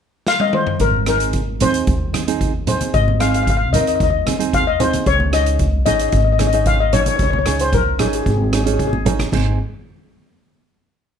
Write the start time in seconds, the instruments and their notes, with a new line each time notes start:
0.27 steel pan F5, snare
0.40 steel pan D#5, high tom
0.53 steel pan C5, mid tom
0.67 floor tom
0.80 upright bass G#1, steel pan A#4, kick, closed hi-hat
1.06 nylon-string guitar C4 D#4 G#4, steel pan A#4, cross-stick, closed hi-hat
1.20 closed hi-hat
1.33 kick, closed hi-hat
1.60 upright bass D#2, nylon-string guitar C4 D#4 G#4, steel pan C5, closed hi-hat, high conga, low conga
1.74 closed hi-hat
1.87 upright bass D#2, kick, closed hi-hat
2.13 nylon-string guitar C4 D#4 G#4, cross-stick, closed hi-hat, high conga
2.27 nylon-string guitar C4 D#4 G#4, closed hi-hat
2.41 kick, closed hi-hat
2.67 nylon-string guitar C4 D#4 G#4, steel pan C5, closed hi-hat, low conga
2.81 closed hi-hat, high conga
2.94 upright bass G#1, steel pan D#5, kick, closed hi-hat
3.08 high conga
3.20 nylon-string guitar C4 D#4 G#4, steel pan F5, cross-stick, closed hi-hat
3.28 steel pan F5
3.34 steel pan F5, closed hi-hat
3.43 steel pan F5
3.47 steel pan F5, kick, closed hi-hat
3.57 steel pan F5
3.73 upright bass D#2, nylon-string guitar C4 D#4 A#4, steel pan D#5, closed hi-hat, high conga, low conga
3.81 steel pan D#5
3.87 steel pan D#5, closed hi-hat
3.96 steel pan D#5
4.00 upright bass D#2, steel pan D#5, kick, closed hi-hat
4.10 steel pan D#5
4.26 nylon-string guitar C4 D#4 G#4, cross-stick, closed hi-hat, high conga
4.39 nylon-string guitar C4 D#4 G#4, closed hi-hat
4.53 steel pan F5, kick, closed hi-hat
4.67 steel pan D#5
4.80 nylon-string guitar C4 D#4 G#4, steel pan C5, closed hi-hat, low conga
4.93 closed hi-hat, high conga
5.06 upright bass C#2, steel pan C#5, kick, closed hi-hat
5.20 high conga
5.32 nylon-string guitar C#4 D#4 G#4, steel pan D#5, cross-stick, closed hi-hat
5.46 closed hi-hat
5.59 kick, closed hi-hat
5.86 upright bass G#1, nylon-string guitar C#4 D#4 G#4, steel pan D#5, closed hi-hat, high conga, low conga
5.94 steel pan D#5
5.99 steel pan D#5, closed hi-hat
6.09 upright bass G#1, steel pan D#5, kick, closed hi-hat
6.17 steel pan D#5
6.25 steel pan D#5
6.32 steel pan D#5
6.39 nylon-string guitar C#4 D#4 G#4, steel pan D#5, cross-stick, closed hi-hat, high conga
6.47 steel pan D#5
6.53 nylon-string guitar C#4 D#4 G#4, steel pan D#5, closed hi-hat
6.66 steel pan F5, kick, closed hi-hat
6.80 steel pan D#5
6.93 nylon-string guitar C#4 D#4 G#4, steel pan C#5, closed hi-hat, low conga
7.00 steel pan C#5
7.06 steel pan C#5, closed hi-hat, high conga
7.16 upright bass C#2, steel pan C#5, kick, closed hi-hat
7.23 steel pan C#5
7.31 steel pan C#5, high conga
7.39 steel pan C#5
7.46 nylon-string guitar C#4 D#4 G#4, steel pan C#5, cross-stick, closed hi-hat, low conga
7.59 steel pan C5, closed hi-hat
7.73 steel pan A#4, kick, closed hi-hat, low conga
7.99 upright bass G#1, nylon-string guitar C#4 D#4 G#4, steel pan G#4, cross-stick, closed hi-hat, low conga
8.08 steel pan G#4
8.13 steel pan G#4, closed hi-hat
8.23 upright bass G#1, steel pan G#4, kick, closed hi-hat
8.30 steel pan G#4
8.38 steel pan G#4
8.44 steel pan G#4
8.51 nylon-string guitar C#4 D#4 G#4, steel pan G#4, cross-stick, closed hi-hat
8.57 steel pan G#4
8.65 nylon-string guitar C#4 D#4 G#4, steel pan G#4, closed hi-hat
8.73 steel pan G#4
8.79 steel pan G#4, kick, closed hi-hat
8.87 steel pan G#4
8.93 high conga
9.05 nylon-string guitar C#4 D#4 G#4, closed hi-hat, low conga
9.19 cross-stick, closed hi-hat, high conga
9.32 upright bass G#1, nylon-string guitar C4 D#4 G#4, kick, crash, high conga